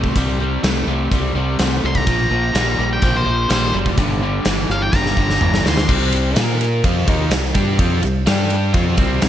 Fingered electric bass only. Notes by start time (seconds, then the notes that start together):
Already playing: C2
0.16 C2
0.63 C2
0.87 C2
1.12 C2
1.35 C2
1.60 C2
1.84 C2
2.07 A#1
2.31 A#1
2.54 A#1
2.79 A#1
3.03 A#1
3.26 A#1
3.50 A#1
3.73 F#1
3.98 G1
4.45 G1
4.69 G1
4.93 G1
5.17 G1
5.41 G1
5.65 D2
5.89 C2
6.36 A#2
6.84 F2
7.08 D#2
7.31 C2
7.55 G2
7.79 F2
8.03 C2
8.27 G2
8.74 F2
8.98 C2
9.23 C2